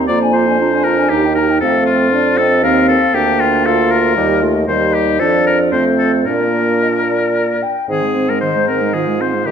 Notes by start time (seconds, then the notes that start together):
0.08 F2 A#3 F4 D5 A#5
0.22 D4 G#5
0.33 F4 C5 A#5
0.47 D4 G#5
0.60 D4 F4 A#5
0.73 D4 G#5
0.84 F4 A#4 A#5
0.99 D4 G#5
1.09 D#2 D#4 G4 A#5
1.25 D#4 G5
1.35 G4 A#4 A#5
1.50 D#4 G5
1.60 F2 A3 C4 A4 F5
1.86 F4
2.13 C4 D4 D5
2.38 C4 A4 D#5
2.63 D#2 C4 A#4 F5
2.88 A4
3.14 D2 A#3 D4 G4 G5
3.40 F4
3.65 F4 A4 F5
3.91 A#4
4.17 D#2 G3 G4 D#5
4.42 A3 F4
4.67 D#2 G3 D#4 C5 D#5
4.94 G4
5.20 F2 F3 D4 A4 D5
5.47 A#4
5.72 F2 A3 C4 C5
5.99 A4
6.26 A#2 A#3 D4 A#4 D5
6.81 D#5
7.08 D5
7.62 G5
7.89 G#2 D#3 C4 G#4
8.02 G#3
8.15 C4
8.28 G#3 A#4
8.41 D#3 D#4 C5
8.55 G#3
8.68 C4 A#4
8.81 G#3
8.94 D#3 F4 G#4
9.07 G#3
9.19 C4 C5
9.34 G#3
9.46 A#2 D#3 D#4 G4